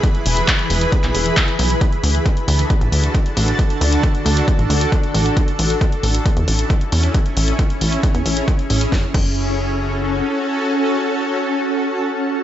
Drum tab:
CC |----------------|----------------|----------------|----------------|
HH |xxoxxxoxxxoxxxox|xxoxxxoxxxoxxxox|xxoxxxoxxxoxxxox|xxoxxxoxxxoxxxox|
CP |----x----x--x---|----------------|----------------|----------------|
SD |----------------|----------------|----------------|----------------|
BD |o---o---o---o---|o---o---o---o---|o---o---o---o---|o---o---o---o---|

CC |----------------|--x-------------|----------------|
HH |xxoxxxoxxxoxxxox|----------------|----------------|
CP |----------------|----------------|----------------|
SD |----------------|o---------------|----------------|
BD |o---o---o---o---|o-o-------------|----------------|